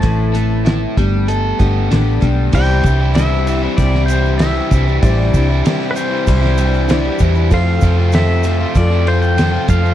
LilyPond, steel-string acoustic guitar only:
\new Staff \with { instrumentName = "Steel-string acoustic guitar" } { \time 4/4 \key c \major \tempo 4 = 96 <a, e a c' e' b'>8 <a c' e' b'>4 <a b d' g'>4 <a b d' g'>8 <a b d' g'>8 <a b d' g'>8 | <c g d' e' g'>8 <d' e' g'>8 <g d' e' g'>4 <c g d' e' g'>4 <g d' e' g'>8 <d' e' g'>8 | <c g d' e' g'>8 <d' e' g'>8 <g d' e' g'>4 <c g d' e' g'>4 <g d' e' g'>4 | <f c' f' a'>8 <c' f' a'>8 <f c' f' a'>8 <c' f' a'>8 <f c' f' a'>4 <f c' f' a'>4 | }